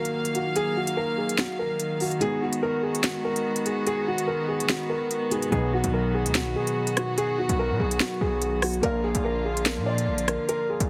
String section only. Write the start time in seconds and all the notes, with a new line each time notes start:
Already playing: D#3 F#3 A#3 F5
2.21 G#3 B3 F#4
5.52 F#3 F#4
8.83 D3 F3 A#3 F4